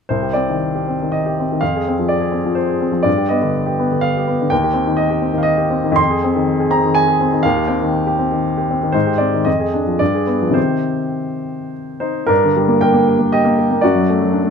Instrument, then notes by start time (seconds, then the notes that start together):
grand piano
0.09 C2 C5
0.22 G4
0.33 C4 D5
0.49 D#3
0.75 G4
0.88 C4
1.02 D#3
1.12 D#5
1.26 G4
1.40 C4
1.52 D#3
1.61 F2 F5
1.76 G#4
1.88 C4
1.99 F3
2.08 D5
2.21 G#4
2.32 C4
2.45 F3
2.55 C5
2.68 G#4
2.81 C4
2.92 F3
3.03 G2 D5
3.18 G4
3.29 B3 D#5
3.42 D3
3.66 G4
3.79 B3
3.91 D3
4.01 F5
4.17 G4
4.27 B3
4.41 D3
4.50 D#2 G5
4.64 G4
4.74 C4
4.87 D#3
4.97 D#5
5.10 G4
5.22 C4
5.33 D#3
5.38 F5
5.43 D#5
5.57 G4
5.70 C4
5.84 D#3
5.92 F2
5.96 C6
6.10 G#4
6.24 C4
6.36 D#3
6.60 G#4
6.71 C4 A#5
6.85 D#3
6.95 G#5
7.08 G#4
7.21 C4
7.33 D#3
7.43 D#2 F5
7.56 G4
7.67 C4 G5
7.82 D#3
8.07 G4
8.19 C4
8.32 D#3
8.57 G4
8.71 C4
8.83 D#3
8.92 G#2 C5
9.07 G4
9.18 C4 D5
9.34 D#3
9.45 F2 D#5
9.60 G#4
9.74 D4
9.87 F3
9.99 G2 D5
10.14 G#4
10.27 B3
10.42 F3
10.50 C3 D#3 C4 G4
10.54 C5
12.00 D#4 C5
12.27 G2 D4 A#4
12.44 D3
12.56 G3
12.68 A#3
12.81 G4 A#4 G5
12.94 A#3
13.08 G4
13.19 A#3
13.32 G4 D#5
13.45 A#3
13.59 G4
13.71 A#3
13.81 F#2 F#4 D5
13.96 F#3
14.10 A3
14.22 F#3
14.32 D4
14.43 A3